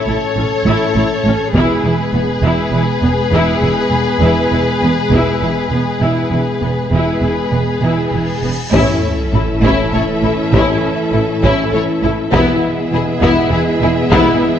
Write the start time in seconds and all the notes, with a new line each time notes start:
Already playing: A3 C#4 A4 C#5
0.06 A1 A2 E4
0.36 A1 A2 C#4
0.65 A1 A2 E4
0.95 A1 A2 E4
1.24 A1 A2 C#4
1.53 E1 E2 G#3 B3 E4 G#4 B4, taiko
1.84 E1 E2 E4
2.13 E1 E2 B3
2.42 E1 E2 E4
2.72 E1 E2 E4
3.01 E1 E2 B3
3.32 E1 E2 E4
3.61 E1 E2 E4
3.91 E1 E2 B3
4.20 E1 E2 E4
4.51 E1 E2 E4
4.81 E1 E2 B3
5.10 E1 E2 E4, taiko
5.40 E1 E2 E4
5.70 E1 E2 B3
6.00 E1 E2 E4
6.30 E1 E2 E4
6.61 E1 E2 B3
6.90 E1 E2 B3 E4 G#4 B4, cymbal swell
6.94 G#3
7.21 E1 E2 E4
7.51 E1 E2 B3
7.81 E1 E2 E4
8.12 E1 E2 E4
8.43 E1 E2 B3
8.72 A1 A2 E3 A3 C#4 E4 A4 E5, taiko, sub drop
9.32 A1 A2 E4 A4
9.61 A1 A2 C#4 E4, taiko
9.92 A1 A2 E4 A4 C#5
10.22 A1 A2 E4 A4
10.53 A1 A2 C#4 E4, taiko
11.13 A1 A2 E4 A4
11.42 A1 A2 C#4 E4, taiko
11.72 A1 A2 E4 A4 C#5
12.03 A1 A2 E4 A4
12.32 E1 E2 E3 G#3 B3 E4 G#4 E5, taiko
12.92 E1 E2 E4 G#4
13.21 E1 E2 B3 E4, taiko
13.51 E1 E2 E4 G#4 B4
13.81 E1 E2 E4 G#4
14.11 E1 E2 B3 E4, taiko